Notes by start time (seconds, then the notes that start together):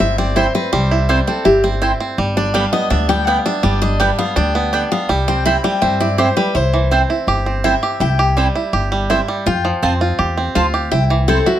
Already playing: G3 C4
0.00 G1 E4 E5
0.18 C4 D5
0.36 C4 E4 C5 G5
0.55 C4 B4
0.73 C2 G3 C5
0.91 E4
1.09 G3 C4 E4 C5 G5
1.27 C4 A4
1.45 G1 E4 G4
1.64 C4 E4
1.82 C4 E4 C5 G5
2.00 C4
2.18 G1 G3
2.37 D4 D5
2.54 G3 B3 G4 D5 F5 G5
2.73 B3 D#5
2.90 D2 D4 E5
3.09 G3 G5
3.27 B3 G4 D5 F5 G5
3.46 D4 E5
3.63 G1 G3 D5
3.82 D4 D#5
4.00 G3 B3 G4 D5 E5 G5
4.19 B3 F5
4.36 D2 D4 G5
4.55 B3
4.73 B3 D4 G4 D5 G5
4.92 B3 F5
5.09 C2 G3 E5
5.28 C4 G5
5.46 C4 E4 C5 G5 B5
5.64 G3 G5
5.82 G2 C4 E5
6.00 E4 D5
6.18 C4 E4 G4 C5 G5
6.37 G3 B4
6.55 C2 E4 C5
6.74 E3
6.91 C4 E4 C5 G5
7.10 E4
7.27 G1 G4
7.46 C4
7.64 C4 E4 C5 E5 G5
7.83 G4
8.00 C2 E4 G5
8.19 G4
8.37 G3 C4 E4 C5 G5
8.55 E4
8.73 G1 G4
8.92 G3
9.10 C4 E4 C5 E5 G5
9.28 G3
9.46 F2 F4 G5
9.65 F3
9.82 F2 C4 F4 C5 A5
10.01 F4
10.19 E2 G4
10.37 C4
10.55 D2 C4 F4 C5 F5 A5
10.74 G4
10.91 C2 E4 G5
11.10 E3
11.28 C4 E4 A4 C5 G5
11.46 E4 F#4